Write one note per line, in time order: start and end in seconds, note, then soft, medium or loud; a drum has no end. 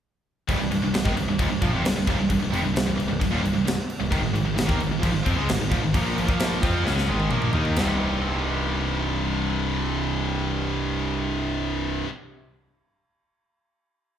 0.48 0.59 C1 medium
0.48 0.59 C2 loud
0.48 0.59 G2 loud
0.48 kick loud
0.48 crash medium
0.61 0.71 C1 medium
0.61 0.70 C2 medium
0.61 0.71 G2 medium
0.71 0.82 C1 medium
0.71 0.81 C2 medium
0.71 0.82 G2 medium
0.71 crash medium
0.82 0.93 C1 medium
0.82 0.92 C2 medium
0.82 0.93 G2 medium
0.94 1.04 C1 medium
0.94 1.05 C2 medium
0.94 1.05 G2 medium
0.94 snare loud
0.94 crash medium
1.05 1.16 G#1 loud
1.05 1.16 G#2 medium
1.05 1.17 D#3 loud
1.05 kick loud
1.17 1.27 C1 medium
1.17 1.27 C2 medium
1.17 1.28 G2 medium
1.17 crash medium
1.28 1.38 C1 medium
1.28 1.39 C2 medium
1.28 1.40 G2 medium
1.39 1.49 D#1 loud
1.39 1.50 D#2 medium
1.39 1.51 A#2 loud
1.39 kick loud
1.39 crash medium
1.50 1.61 C1 medium
1.50 1.62 C2 medium
1.50 1.62 G2 medium
1.62 1.73 A#1 loud
1.62 1.73 A#2 medium
1.62 1.73 F3 loud
1.62 kick loud
1.62 crash medium
1.73 1.83 F1 loud
1.73 1.84 F2 loud
1.73 1.84 C3 loud
1.84 1.94 C1 medium
1.84 1.96 C2 medium
1.84 1.97 G2 medium
1.84 snare loud
1.84 crash medium
1.95 2.06 C1 medium
1.95 2.08 C2 medium
1.95 2.08 G2 medium
2.07 2.18 D#1 loud
2.07 2.18 D#2 medium
2.07 2.19 A#2 loud
2.07 kick loud
2.07 crash medium
2.18 2.29 C1 medium
2.18 2.31 C2 medium
2.18 2.31 G2 medium
2.30 2.41 C1 medium
2.30 2.41 C2 medium
2.30 2.42 G2 medium
2.30 kick medium
2.30 crash medium
2.41 2.52 C1 medium
2.41 2.53 C2 medium
2.41 2.53 G2 medium
2.53 2.63 F1 medium
2.53 2.64 F2 medium
2.53 2.64 C3 medium
2.53 crash medium
2.64 2.73 C1 medium
2.64 2.76 C2 medium
2.64 2.76 G2 medium
2.74 2.85 C1 medium
2.74 2.87 C2 medium
2.74 2.87 G2 medium
2.74 snare loud
2.74 crash medium
2.87 2.98 C1 medium
2.87 2.98 C2 medium
2.87 2.99 G2 medium
2.99 3.09 C1 medium
2.99 3.09 C2 medium
2.99 3.09 G2 medium
2.99 crash medium
3.10 3.21 C1 medium
3.10 3.20 C2 medium
3.10 3.21 G2 medium
3.21 3.32 C1 medium
3.21 3.32 C2 medium
3.21 3.33 G2 medium
3.21 kick loud
3.21 crash medium
3.33 3.43 D#1 loud
3.33 3.43 D#2 medium
3.33 3.43 A#2 medium
3.44 3.54 C1 medium
3.44 3.54 C2 medium
3.44 3.54 G2 medium
3.44 crash medium
3.55 3.66 C1 medium
3.55 3.64 C2 medium
3.55 3.64 G2 medium
3.65 3.77 C2 medium
3.65 3.77 G2 medium
3.65 snare loud
3.65 crash medium
3.90 crash medium
4.00 4.11 C1 medium
4.00 4.10 C2 medium
4.00 4.11 G2 medium
4.11 4.23 G#1 medium
4.11 4.20 G#2 loud
4.11 4.20 D#3 loud
4.11 kick loud
4.11 crash medium
4.21 4.32 G#2 medium
4.21 4.33 D#3 medium
4.26 4.35 G#1 medium
4.33 4.46 G#1 medium
4.33 4.43 G#2 medium
4.33 4.44 D#3 medium
4.33 crash medium
4.45 4.58 G#1 medium
4.45 4.55 G#2 medium
4.45 4.55 D#3 medium
4.56 4.68 G#2 medium
4.56 4.66 D#3 medium
4.56 snare loud
4.56 crash medium
4.60 4.69 G#1 medium
4.67 4.80 D#2 loud
4.67 4.78 D#3 medium
4.67 4.79 A#3 loud
4.67 kick loud
4.79 4.92 G#1 medium
4.79 4.90 G#2 medium
4.79 4.90 D#3 medium
4.79 crash medium
4.87 4.99 G#2 medium
4.91 5.03 G#1 medium
4.91 5.02 G#2 medium
4.91 5.02 D#3 medium
5.02 5.14 A#1 loud
5.02 5.13 A#2 medium
5.02 5.14 F3 loud
5.02 kick loud
5.02 crash medium
5.14 5.25 G#1 medium
5.14 5.26 G#2 medium
5.14 5.26 D#3 medium
5.25 5.37 F2 loud
5.25 5.36 F3 medium
5.25 5.37 C4 loud
5.25 kick loud
5.25 crash medium
5.37 5.48 C#2 medium
5.37 5.48 C#3 loud
5.37 5.48 G#3 loud
5.48 5.60 G#1 medium
5.48 5.57 G#2 medium
5.48 5.58 D#3 medium
5.48 snare loud
5.48 crash loud
5.58 5.71 G#1 medium
5.58 5.70 G#2 medium
5.58 5.71 D#3 medium
5.71 5.83 A#1 loud
5.71 5.82 A#2 medium
5.71 5.82 F3 loud
5.71 kick loud
5.71 crash medium
5.82 5.94 G#1 medium
5.82 5.94 G#2 medium
5.82 5.95 D#3 medium
5.94 6.16 A#1 loud
5.94 6.15 A#2 loud
5.94 6.15 F3 loud
5.94 6.17 A#3 loud
5.94 kick loud
5.94 crash medium
6.16 6.29 A#1 medium
6.16 6.27 A#2 medium
6.16 6.28 F3 medium
6.16 crash medium
6.28 6.61 A#1 medium
6.28 6.62 A#2 medium
6.28 6.60 F3 medium
6.28 6.61 A#3 loud
6.28 kick loud
6.40 snare loud
6.40 crash medium
6.61 6.84 F2 loud
6.61 6.84 F3 loud
6.61 6.85 C4 loud
6.61 6.85 F4 loud
6.61 kick loud
6.61 crash medium
6.84 7.07 C#2 loud
6.84 7.07 C#3 medium
6.84 7.07 G#3 loud
6.84 7.08 C#4 loud
6.84 snare medium
6.98 snare medium
7.08 7.30 G#1 loud
7.08 7.30 G#2 medium
7.08 7.31 D#3 medium
7.08 7.31 G#3 loud
7.08 high tom medium
7.20 high tom medium
7.31 7.53 A#1 medium
7.31 7.54 A#2 medium
7.31 7.53 F3 loud
7.31 7.53 A#3 loud
7.31 mid tom loud
7.42 mid tom medium
7.53 7.76 D#2 loud
7.53 7.76 D#3 medium
7.53 7.76 A#3 medium
7.53 7.77 D#4 loud
7.53 floor tom loud
7.65 floor tom medium
7.76 12.01 C1 medium
7.76 12.04 C2 medium
7.76 12.04 G2 loud
7.76 12.06 C3 loud
7.76 12.07 G3 loud
7.76 snare loud
7.76 ride bell medium
7.80 12.08 D#4 loud